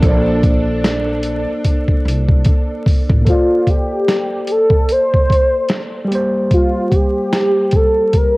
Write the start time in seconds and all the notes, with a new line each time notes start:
Already playing: D4 A4
0.00 A#1 A#3 A4, kick, closed hi-hat
0.05 C5 D5
0.43 kick, closed hi-hat
0.84 snare, closed hi-hat
1.23 closed hi-hat
1.65 kick, closed hi-hat
1.88 kick
2.05 C2, closed hi-hat
2.29 kick
2.45 kick, closed hi-hat
2.86 kick, open hi-hat
3.10 A1, kick
3.22 A#3 A4
3.27 F4 C5, kick, closed hi-hat
3.32 D5
3.67 G4, kick, closed hi-hat
4.09 snare, closed hi-hat
4.47 A4, closed hi-hat
4.70 kick
4.89 C5, closed hi-hat
5.14 kick
5.30 kick, closed hi-hat
5.69 snare, closed hi-hat
6.05 G3 G4
6.11 A#3 C5, closed hi-hat
6.51 F4, kick, closed hi-hat
6.89 F#4, kick, closed hi-hat
6.95 G4
7.33 snare, closed hi-hat
7.71 kick, closed hi-hat
7.76 A4
8.13 A#4, kick, closed hi-hat